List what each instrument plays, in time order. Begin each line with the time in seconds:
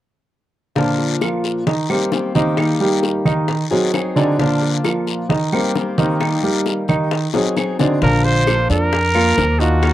0.75 steel-string acoustic guitar A#2 F3 A#3 D4 F4, grand piano D3 D4 D5, high bongo, long guiro
0.99 high bongo
1.21 grand piano F3 F4 A#4, high bongo, short guiro, claves
1.44 high bongo, short guiro
1.67 grand piano D#3 D#4 D#5, muted steel-string acoustic guitar stroke, high bongo, long guiro
1.90 steel-string acoustic guitar D#3 A#3 C4 G4, grand piano G3 G4 A#4, high bongo, claves
2.12 steel-string acoustic guitar D#3 A#3 C4 G4, high bongo, low bongo, short guiro
2.35 grand piano D#3 D#4 D#5, steel-string acoustic guitar D#3 A#3 C4 G4, short guiro
2.57 steel-string acoustic guitar D#3 G3 A#3 D#4 G4, high bongo, long guiro, claves
2.80 grand piano G3 G4 A#4, high bongo
3.03 high bongo, short guiro
3.25 grand piano D#3 D#4 D#5, high bongo, short guiro, claves
3.48 muted steel-string acoustic guitar stroke, high bongo, long guiro
3.71 steel-string acoustic guitar D#3 F#3 C4 D#4 G#4, grand piano F#3 F#4 G#4, high bongo
3.93 steel-string acoustic guitar F#3 C4 D#4 G#4, high bongo, low bongo, short guiro, claves
4.16 grand piano D3 D4 D5, steel-string acoustic guitar D#3 F#3 C4 D#4 G#4, short guiro
4.39 steel-string acoustic guitar A#2 F3 A#3 D4 F4, grand piano D3 D4 D5, high bongo, long guiro
4.62 high bongo
4.84 grand piano F3 F4 A#4, high bongo, short guiro, claves
5.07 high bongo, short guiro
5.29 grand piano D#3 D#4 D#5, muted steel-string acoustic guitar stroke, high bongo, long guiro
5.52 steel-string acoustic guitar D#3 A#3 C4 G4, grand piano G3 G4 A#4, high bongo, claves
5.75 steel-string acoustic guitar D#3 A#3 C4 G4, high bongo, low bongo, short guiro
5.98 grand piano D#3 D#4 D#5, steel-string acoustic guitar D#3 A#3 C4 G4, short guiro
6.20 steel-string acoustic guitar D#3 G3 A#3 D#4 G4, high bongo, long guiro, claves
6.43 grand piano G3 G4 A#4, high bongo
6.66 high bongo, short guiro
6.88 grand piano D#3 D#4 D#5, high bongo, short guiro, claves
7.11 muted steel-string acoustic guitar stroke, high bongo, long guiro
7.34 steel-string acoustic guitar D#3 F#3 C4 D#4 G#4, grand piano F#3 F#4 G#4, high bongo
7.56 steel-string acoustic guitar F#3 C4 D#4 G#4, low bongo, short guiro, claves
7.79 grand piano D3 D4 D5, steel-string acoustic guitar D#3 F#3 C4 D#4 G#4, low bongo, short guiro
8.01 upright bass A#1, grand piano D3 D4, steel-string acoustic guitar F3 A#3 D4 F4, trumpet A#4, high bongo, long guiro
8.24 trumpet C5, high bongo
8.47 grand piano F3 F4, steel-string acoustic guitar F3 A#3 D4 F4, high bongo, short guiro, claves
8.70 upright bass F2, grand piano D4 D5, trumpet A#4, high bongo, short guiro
8.93 muted steel-string acoustic guitar stroke, high bongo, long guiro
9.15 grand piano A#3 A#4, steel-string acoustic guitar A#3 D4 F4, high bongo, claves
9.37 upright bass D#2, steel-string acoustic guitar F3 A#3 D4 F4, high bongo, low bongo, short guiro
9.60 steel-string acoustic guitar A#3 D4 F4, grand piano D#4 D#5, trumpet F#4, short guiro
9.82 steel-string acoustic guitar D#3 F#3 A#3 F4, high bongo, long guiro, claves